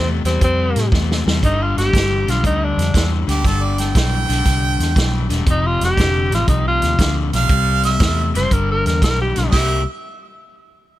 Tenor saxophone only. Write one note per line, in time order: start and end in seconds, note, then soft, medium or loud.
0.26 0.41 C4 medium
0.44 0.92 C4 loud
1.45 1.64 D#4 medium
1.62 1.77 F4 medium
1.78 2.32 G4 loud
2.30 2.45 F4 medium
2.46 2.66 D#4 medium
2.64 3.11 D4 medium
5.51 5.68 D#4 medium
5.66 5.82 F4 medium
5.84 6.32 G4 loud
6.35 6.48 F4 medium
6.49 6.65 D#4 medium
6.68 7.16 F4 loud
8.36 8.54 C5 loud
8.53 8.69 A#4 medium
8.71 8.86 A#4 loud
8.87 9.02 A#4 medium
9.04 9.19 A#4 loud
9.21 9.53 G4 medium
9.53 9.85 G4 medium